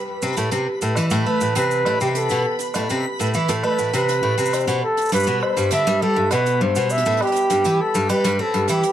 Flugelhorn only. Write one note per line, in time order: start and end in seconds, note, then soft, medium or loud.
1.27 1.55 B4 medium
1.56 1.98 B4 medium
2.01 2.08 G4 medium
2.16 2.57 A4 medium
3.64 3.92 B4 medium
3.95 4.55 B4 medium
4.54 4.83 C5 medium
4.83 5.11 A4 medium
5.13 5.40 B4 loud
5.42 5.69 C5 medium
5.72 6.03 E5 loud
6.02 6.31 A4 medium
6.32 6.63 B4 medium
6.62 6.92 C5 medium
6.91 7.23 E5 medium
7.22 7.82 G4 medium
7.81 8.09 A4 medium
8.10 8.42 B4 medium
8.40 8.69 A4 medium
8.69 8.92 G4 medium